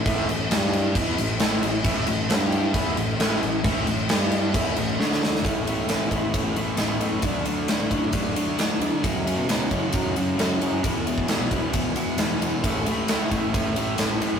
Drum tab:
CC |x-x-x-x-x-x-x-x-|x-x-x-x-x-x-x-x-|x-x-x-x-x-x-----|----------------|
RD |----------------|----------------|----------------|x-x-x-x-x-x-x-x-|
SD |----o-------o---|----o-------o---|----o-------oooo|----o-------o---|
BD |o-------o-------|o-------o-------|o-------o-------|o-----o-o-------|

CC |----------------|----------------|----------------|----------------|
RD |x-x-x-x-x-x-x-x-|x-x-x-x-x-x-x-x-|x-x-x-x-x-x-x-x-|x-x-x-x-x-x-x-x-|
SD |----o-------o---|----o-------o---|----o-------o---|----o-------o---|
BD |o-----o-o-------|o-----o-o-------|o--o--o-o-------|o-----o-o-------|